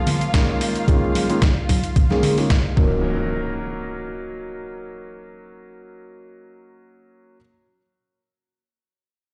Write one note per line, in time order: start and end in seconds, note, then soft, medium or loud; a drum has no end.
0.00 0.30 F3 medium
0.00 0.31 G#3 medium
0.00 0.31 A#3 medium
0.00 0.31 C#4 medium
0.00 2.77 F4 medium
0.00 0.31 G#4 loud
0.00 2.77 F5 medium
0.07 open hi-hat medium
0.07 low conga medium
0.21 closed hi-hat medium
0.34 0.85 D#3 medium
0.34 0.85 G#3 medium
0.34 0.85 A#3 medium
0.34 0.85 C#4 medium
0.34 0.85 G#4 medium
0.34 kick loud
0.34 snare loud
0.34 closed hi-hat soft
0.61 open hi-hat medium
0.76 closed hi-hat medium
0.88 1.26 D#3 medium
0.88 1.26 G#3 medium
0.88 1.26 A#3 medium
0.88 1.26 C#4 medium
0.88 1.26 F4 medium
0.88 kick loud
0.88 closed hi-hat medium
1.15 open hi-hat medium
1.15 high conga medium
1.29 1.38 D#3 medium
1.29 1.38 G#3 medium
1.29 1.38 A#3 medium
1.29 1.38 C#4 medium
1.29 1.38 F4 medium
1.29 closed hi-hat medium
1.42 kick loud
1.42 snare loud
1.42 closed hi-hat soft
1.69 kick medium
1.69 open hi-hat medium
1.69 high conga medium
1.83 closed hi-hat medium
1.83 high conga medium
1.96 kick loud
1.96 closed hi-hat medium
2.10 2.34 D#3 medium
2.10 2.34 G#3 medium
2.10 2.34 A#3 medium
2.10 2.34 C#4 medium
2.10 2.34 G#4 medium
2.10 snare soft
2.10 high conga medium
2.23 open hi-hat medium
2.23 low conga medium
2.38 2.51 D#3 medium
2.38 2.51 G#3 medium
2.38 2.51 A#3 medium
2.38 2.51 C#4 medium
2.38 2.52 F4 medium
2.38 open hi-hat medium
2.50 kick loud
2.50 snare loud
2.50 closed hi-hat medium
2.76 7.36 F#3 medium
2.76 7.37 A#3 medium
2.76 7.37 C#4 medium
2.76 7.38 D#4 medium
2.76 7.39 A#4 medium
2.76 kick loud
2.76 impact medium